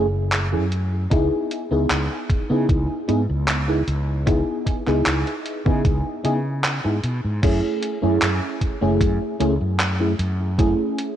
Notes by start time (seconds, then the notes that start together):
Already playing: F#1
0.32 clap, closed hi-hat
0.52 F#2 A3 C#4 E4 G#4
0.72 closed hi-hat
1.10 C#2 B3 D#4 E4 G#4, kick, closed hi-hat
1.51 closed hi-hat
1.71 C#2 B3 D#4 E4 G#4
1.90 C#2, clap, closed hi-hat
2.30 kick, closed hi-hat
2.50 C#3 B3 D#4 E4 G#4
2.69 C#2, kick, closed hi-hat
3.08 G#2 B3 D#4 E4 G#4, closed hi-hat
3.30 C#2
3.48 clap, closed hi-hat
3.68 B3 D#4 E4 G#4
3.88 C#2, closed hi-hat
4.26 B3 D#4 E4 G#4, kick, closed hi-hat
4.66 kick, closed hi-hat
4.86 C#2 B3 D#4 E4 G#4, clap
5.06 C#2, clap, closed hi-hat
5.27 closed hi-hat
5.46 closed hi-hat
5.65 C#3 B3 D#4 E4 G#4, kick
5.85 C#2, kick, closed hi-hat
6.23 C#3 B3 D#4 E4 G#4, closed hi-hat
6.64 clap, closed hi-hat
6.84 G#2 B3 D#4 E4 G#4
7.03 B2, closed hi-hat
7.24 G#2
7.42 F#2 A3 C#4 E4 G#4, kick, closed hi-hat, crash
7.82 closed hi-hat
8.02 F#2 A3 C#4 E4 G#4
8.22 F#2, clap, closed hi-hat
8.61 kick, closed hi-hat
8.81 F#1 A3 C#4 E4 G#4
9.01 F#2, kick, closed hi-hat
9.40 C#2 A3 C#4 E4 G#4, closed hi-hat
9.61 F#2
9.80 clap, closed hi-hat
10.00 A3 C#4 E4 G#4
10.19 F#2, closed hi-hat
10.58 A3 C#4 E4 G#4, kick, closed hi-hat
10.99 closed hi-hat